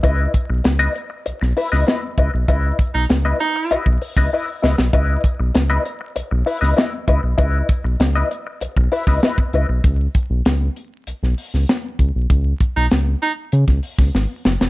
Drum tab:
HH |x-x-x-x-x-o-x-x-|x-x-x-x-x-o-----|x-x-x-x-x-o-x-x-|x-x-x-x-x-o-x-x-|
SD |----o----o-oo---|----o------o--oo|----o------oo---|----o------oo---|
BD |o-o-----------o-|o-o------o-o----|o-o-----------o-|o-o------o-o-o--|

HH |x-x-x-x-x-o-x-x-|x-x-x-x-x-o-----|
SD |----o----o-oo---|----o----o-oo-oo|
BD |o-o-----------o-|o-o------o-o----|